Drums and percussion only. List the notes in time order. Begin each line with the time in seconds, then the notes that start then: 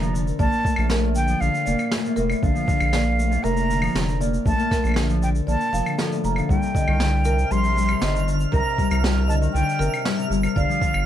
0.02 shaker
0.15 shaker
0.27 shaker
0.39 kick, shaker
0.52 shaker
0.65 kick, shaker
0.76 claves, shaker
0.90 snare, shaker
1.15 shaker
1.28 shaker
1.42 shaker
1.55 shaker
1.67 shaker
1.79 claves, shaker
1.91 snare, shaker
2.05 shaker
2.17 shaker
2.30 claves, shaker
2.43 kick, shaker
2.56 shaker
2.68 kick, shaker
2.80 claves, shaker
2.93 snare, shaker
2.99 shaker
3.03 shaker
3.19 shaker
3.32 shaker
3.45 shaker
3.57 shaker
3.70 shaker
3.82 claves, shaker
3.86 shaker
3.89 shaker
3.92 snare, shaker
3.96 shaker
4.09 shaker
4.21 shaker
4.34 shaker
4.46 kick, shaker
4.59 shaker
4.71 kick, snare, shaker
4.84 claves, shaker
4.87 claves
4.89 claves
4.91 claves
4.94 snare, claves, shaker
5.10 shaker
5.23 shaker
5.35 shaker
5.49 shaker
5.61 shaker
5.74 shaker
5.86 claves, shaker
5.99 snare, shaker
6.12 shaker
6.24 shaker
6.36 claves, shaker
6.49 kick, shaker
6.62 shaker
6.75 kick, shaker
6.88 claves
7.00 snare, shaker
7.25 shaker
7.39 shaker
7.51 shaker
7.64 shaker
7.78 shaker
7.89 claves, shaker
8.02 snare, shaker
8.16 shaker
8.28 shaker
8.40 shaker
8.53 kick, shaker
8.78 kick, shaker
8.91 claves, shaker
9.04 snare, shaker
9.30 shaker
9.42 shaker
9.56 shaker
9.69 shaker
9.81 shaker
9.94 claves, shaker
10.05 snare, shaker
10.19 shaker
10.32 shaker
10.43 claves, shaker
10.56 kick, shaker
10.70 shaker
10.82 kick, shaker
10.94 claves